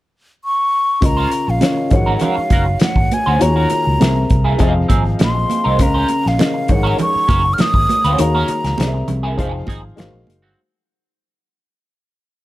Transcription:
0.44 C#6
1.01 C#2 C#3 C#4 F4 A#4 D#5, muted clean electric guitar stroke, kick, closed hi-hat, muted conga
1.06 A#5
1.17 C#4 F4 C5
1.31 muted clean electric guitar stroke, closed hi-hat
1.47 A#1 F5, muted clean electric guitar stroke
1.60 C#3 C#4 F4 A#4 C#5, muted clean electric guitar stroke, snare, closed hi-hat, high conga
1.77 muted clean electric guitar stroke
1.90 G#1 G#3 D#4 F#4 A#4 C#5, kick, closed hi-hat, low conga
1.96 F#5
2.06 C#4 F#4 A#4
2.17 F#5, closed hi-hat
2.21 C#4 F#4 A#4 F5, low conga
2.37 muted clean electric guitar stroke, muted fingered electric bass stroke
2.50 F#1 C#4 F#4 A#4, kick, closed hi-hat, muted conga
2.66 muted clean electric guitar stroke
2.80 F#5, muted clean electric guitar stroke, muted fingered electric bass stroke, snare, closed hi-hat, high conga
2.96 G#1, muted clean electric guitar stroke, kick
3.11 G#5, closed hi-hat, high conga
3.26 D2 C#4 F#4 C5
3.39 D#2 D#3 A#3 F4 F#4 G#4 C#5 A#5, muted clean electric guitar stroke, closed hi-hat, muted conga
3.56 C#4 F#4 A#4
3.70 muted clean electric guitar stroke, muted fingered electric bass stroke, closed hi-hat, muted conga
3.85 C#2, muted clean electric guitar stroke
3.99 C2 C3 C4 G#4 A#4 E5, muted clean electric guitar stroke, snare, closed hi-hat, high conga
4.15 muted clean electric guitar stroke
4.30 C2, kick, closed hi-hat
4.44 A#3 E4 G#4
4.58 F1 F3 C4 D#4 G#4 D#5 E5, kick, closed hi-hat
4.68 F5
4.74 muted clean electric guitar stroke
4.88 G#1 C4 D#4 G#4, kick, closed hi-hat, muted conga
5.04 muted clean electric guitar stroke
5.19 A#1, muted clean electric guitar stroke, snare, closed hi-hat, high conga
5.23 C6
5.35 muted clean electric guitar stroke
5.50 closed hi-hat, high conga
5.64 C2 C4 D#4 A#4
5.78 C#2 C#3 C#4 A#4 D#5 F5, muted clean electric guitar stroke, kick, closed hi-hat, muted conga
5.82 A#5
5.94 C#4 F4 C5
6.08 muted clean electric guitar stroke, closed hi-hat, muted conga
6.24 A#1, muted clean electric guitar stroke, snare
6.28 F5
6.38 C#3 C#4 A#4 D#5 F5, muted clean electric guitar stroke, snare, closed hi-hat, high conga
6.54 muted clean electric guitar stroke
6.68 G#1 G#3 D#4 A#4 C#5 F#5, kick, closed hi-hat, low conga
6.72 F#5
6.83 C#4 F#4 A#4
6.87 A#5
6.98 C#6, muted clean electric guitar stroke, closed hi-hat, low conga
7.16 muted fingered electric bass stroke
7.28 F#1 C#4 F#4 A#4, kick, closed hi-hat, muted conga
7.44 muted clean electric guitar stroke
7.54 F6
7.58 D#6, muted clean electric guitar stroke, snare, closed hi-hat, high conga
7.74 G#1, muted clean electric guitar stroke, kick
7.89 closed hi-hat, high conga
8.04 D2 C#4 F#4 C5, closed hi-hat
8.18 D#2 D#3 A#3 F#4 G#4 C#5 F5 A#5, muted clean electric guitar stroke, closed hi-hat, muted conga
8.35 C#4 F#4 A#4
8.48 muted fingered electric bass stroke, muted clean electric guitar stroke, closed hi-hat, muted conga
8.64 C#2, muted clean electric guitar stroke, snare, closed hi-hat
8.78 C2 C3 C4 G#4 A#4 D5, muted clean electric guitar stroke, snare, closed hi-hat, high conga
8.88 E5
8.94 muted clean electric guitar stroke
9.08 C2, closed hi-hat, low conga
9.23 A#3 E4 G#4
9.37 F1 F3 C4 D#4 G#4 C5 F5, kick, closed hi-hat
9.53 muted clean electric guitar stroke
9.67 G#1 C4 D#4 G#4, kick, closed hi-hat, muted conga
9.83 muted clean electric guitar stroke
9.96 G#1 G#3 D#4 F#4 A#4 C5 F5, muted clean electric guitar stroke, closed hi-hat, high conga
10.00 snare
10.12 A#1, muted clean electric guitar stroke
10.27 F#1, closed hi-hat, high conga
10.42 G1 F#3 C4 F#4

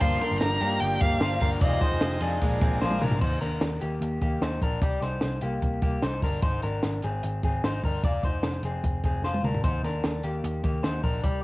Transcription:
0.01 G1 G2 D3 F3 A#3 D4 F4 G4 A#4 C5 D5 C6, kick, hi-hat pedal, ride
0.21 D4 A#4, snare, ride
0.31 G1
0.41 G1 A#5, snare, ride
0.61 G2 D3 F3 A#3 G4, ride
0.65 D4
0.80 G1 G5, ride
1.00 G1 D3 F3 A#3 D4 G4 F5, kick, ride
1.20 G1 D3 F3 A#3 D4 F4 C5, snare, ride
1.41 G1 D3 F3 A#3 D4 A#4 F5, kick, open hi-hat, ride
1.61 F1 F2 C3 D#3 G#3 D#4 F4 G#4 C5 D5 D#5, kick, hi-hat pedal, ride
1.81 D#4 C5, kick, snare, ride
1.92 F1
2.01 F1, snare, ride
2.20 F2 C3 D#3 G#3 D4 D#4 G#4, ride
2.41 A#1 A#2 F3 G#3 D4 F4 G#4 A#4 D5, kick, ride
2.60 A#1 A#2 F3 G#3 C4 D4 G#4, kick, ride
2.81 A#1 A#2 F3 G#3 D4 F4 C5, snare
2.91 high tom
3.01 A#1 A#2 F3 G#3 D4 A#4, mid tom
3.11 floor tom
3.21 D#2 D#4 C5, kick, crash
3.41 D#2 D4 A#4, snare, closed hi-hat
3.61 D#2, snare, closed hi-hat
3.81 D#2 A#3 G4, closed hi-hat
4.01 D#2, closed hi-hat
4.21 D#2 A#3 G4, kick, closed hi-hat
4.42 D#2 D#4 C5, snare, closed hi-hat
4.61 A#1 D4 A#4, kick, closed hi-hat
4.82 C2 G4 D5, kick, closed hi-hat
5.02 C2 D#4 C5, snare, closed hi-hat
5.21 C2, snare, closed hi-hat
5.41 C2 A#3 G4, closed hi-hat
5.62 C2, kick, closed hi-hat
5.82 C2 A#3 G4, kick, closed hi-hat
6.03 C2 D#4 C5, snare, closed hi-hat
6.22 G1 D4 A#4, kick, open hi-hat
6.43 G#1 D#4 C5, kick, closed hi-hat
6.63 G#1 D4 A#4, closed hi-hat
6.83 G#1, snare, closed hi-hat
7.02 G#1 C4 G#4, closed hi-hat
7.23 G#1, closed hi-hat
7.43 G#1 C4 G#4, kick, closed hi-hat
7.64 G#1 D#4 C5, snare, closed hi-hat
7.83 G1 D4 A#4, kick, open hi-hat
8.04 F1 F4 D5, kick, closed hi-hat
8.23 F1 D#4 C5, kick, closed hi-hat
8.43 F1, snare, closed hi-hat
8.63 F1 C4 G#4, closed hi-hat
8.83 F1, kick, closed hi-hat
9.04 F1 C4 G#4, kick, closed hi-hat
9.22 F1 F4 C5, snare
9.34 high tom
9.43 D2 D4 A#4, mid tom
9.54 floor tom
9.64 D#2 D#4 C5, kick, closed hi-hat
9.83 D#2 D4 A#4, snare, closed hi-hat
10.04 D#2, snare, closed hi-hat
10.23 D#2 A#3 G4, closed hi-hat
10.44 D#2, closed hi-hat
10.64 D#2 A#3 G4, kick, closed hi-hat
10.83 D#2 D#4 C5, snare, closed hi-hat
11.04 A#1 D4 A#4, kick, open hi-hat
11.24 C2 G4 D5, kick, closed hi-hat

